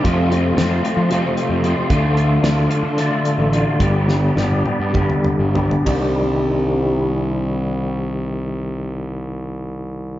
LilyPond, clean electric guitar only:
\new Staff \with { instrumentName = "Clean electric guitar" } { \time 7/8 \key c \dorian \tempo 4 = 102 <f, c f a c' f'>8 <f a c' f'>8 <f a c' f'>8 <f a c' f'>8 <f, c f a c' f'>4 <f a c' f'>8 | <d a d' f'>8 <a d' f'>8 <d a d' f'>8 <a d' f'>8 <d a d' f'>4 <d a d' f'>8 | <g, d g b d' g'>8 <g b d' g'>8 <g b d' g'>8 <g b d' g'>8 <g, d g b d' g'>4 <g b d' g'>8 | <c ees g d' g'>2.~ <c ees g d' g'>8~ |
<c ees g d' g'>2.~ <c ees g d' g'>8 | }